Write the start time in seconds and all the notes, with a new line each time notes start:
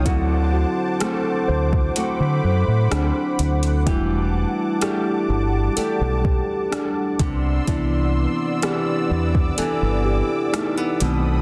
0.05 D2 D3 F#3 C4 E4 F#4 C5 F#5 A5 D6, kick, closed hi-hat
0.53 F#4
1.00 A3 C4 F#4 A4, cross-stick, closed hi-hat
1.48 D2 C5
1.73 kick
1.96 A3 C4 F#4 B5, closed hi-hat
2.20 D3
2.44 F#2
2.68 A2
2.91 D2 C4 D4, cross-stick, closed hi-hat
3.39 D2, closed hi-hat
3.63 closed hi-hat
3.86 E1 E3 G3 A3 D4 E4 F#4 G4 A5 D6, kick, closed hi-hat
4.82 A3 D4 G4, cross-stick, closed hi-hat
5.30 G1
5.77 A3 D4 G4 A4, muted fingered electric bass stroke, closed hi-hat
6.01 B1
6.24 G4, kick
6.72 D4, cross-stick, closed hi-hat
7.19 C2 C3 B3 D5 C6 E6, kick, closed hi-hat
7.67 C2 C3 E3 B3 D4 E4, kick, closed hi-hat
8.62 E3 B3 D4 G4, cross-stick, closed hi-hat
9.11 E2 D6
9.35 kick
9.58 E3 B3 D4 A4, muted fingered electric bass stroke, closed hi-hat
9.82 G1
10.05 G4
10.53 A3 D#4, cross-stick, closed hi-hat
10.77 B3
11.00 B1 B2 D#3 A3 C4 A4 B5 D#6, closed hi-hat